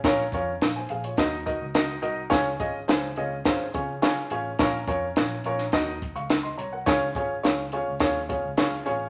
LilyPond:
<<
  \new Staff \with { instrumentName = "Grand piano" } { \time 4/4 \key des \major \tempo 4 = 105 << { r4 <f'' des'''>16 <c'' aes''>16 <aes' f''>16 <f' des''>8 r4. r16 | r1 | r2 r8. <f'' des'''>8 <ees'' c'''>16 <des'' bes''>16 <bes' ges''>16~ | <bes' ges''>16 r2. r8. | } \\ { <des' f' bes' des''>8 <des' f' bes' des''>8 r4 <ees' ges' bes' ees''>8 <ees' ges' bes' ees''>8 <ees' ges' bes' ees''>8 <ees' ges' bes' ees''>8 | <des' f' aes' des''>8 <des' f' aes' ees''>8 <des' f' aes' c''>8 <des' f' aes' ees''>8 <des' f' aes' c''>8 <des' f' aes' des''>8 <des' f' aes' des''>8 <des' f' aes' des''>8 | <des' f' bes' des''>8 <des' f' bes' des''>8 <des' f' bes' des''>8 <des' f' bes' des''>8 <ees' ges' bes' ees''>8 r4. | <des' f' aes' des''>8 <des' f' aes' des''>8 <des' f' aes' des''>8 <des' f' aes' des''>8 <des' f' aes' des''>8 <des' f' aes' des''>8 <des' f' aes' des''>8 <des' f' aes' des''>8 | } >> }
  \new Staff \with { instrumentName = "Picked electric bass" } { \clef bass \time 4/4 \key des \major bes,,8 f,8 bes,,8 bes,,8 ees,8. des,8. c,8 | des,8 aes,,8 des,8 des,8 aes,,8 des4 a,,8 | bes,,8 f,8 bes,,8 bes,,8 ees,8. des,8. c,8 | des,8 aes,,8 des,8. des,16 ees,8. des,8. a,,8 | }
  \new DrumStaff \with { instrumentName = "Drums" } \drummode { \time 4/4 <hh bd sn>8 <hh bd>8 <hh sn>8 hh16 hh16 <hh bd sn>8 <hh bd>8 <hh sn>8 hh8 | <hh bd sn>8 <hh bd>8 <hh sn>8 hh8 <hh bd sn>8 <hh bd>8 <hh sn>8 hh8 | <hh bd sn>8 <hh bd>8 <hh sn>8 hh16 <hh sn>16 <hh bd sn>8 <hh bd>16 hh16 <hh sn>8 hh8 | <hh bd sn>8 <hh bd>8 <hh sn>8 hh8 <hh bd sn>8 <hh bd>8 <hh sn>8 hh8 | }
>>